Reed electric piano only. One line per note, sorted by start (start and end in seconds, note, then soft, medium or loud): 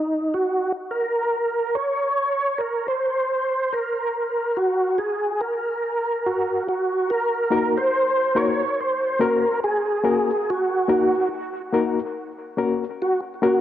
7.50 7.76 A#3 medium
7.50 7.76 D#4 medium
7.50 7.76 F#4 medium
7.50 7.77 A#4 loud
8.35 8.60 A#3 medium
8.35 8.61 D#4 medium
8.35 8.61 F#4 medium
8.35 8.61 A#4 loud
9.20 9.45 A#3 medium
9.20 9.45 C#4 medium
9.20 9.45 F#4 medium
9.20 9.46 A#4 loud
10.03 10.29 A#3 loud
10.03 10.29 C#4 medium
10.03 10.30 F#4 medium
10.03 10.30 A#4 loud
10.88 11.14 A#3 medium
10.88 11.14 D#4 medium
10.88 11.14 F#4 medium
10.88 11.14 A#4 loud
11.73 11.98 A#3 loud
11.73 11.98 D#4 medium
11.73 11.99 F#4 medium
11.73 11.99 A#4 loud
12.57 12.83 A#3 medium
12.57 12.83 C#4 medium
12.57 12.83 F#4 medium
12.57 12.83 A#4 loud
13.42 13.61 A#3 loud
13.42 13.61 C#4 medium
13.42 13.61 F#4 medium
13.42 13.61 A#4 loud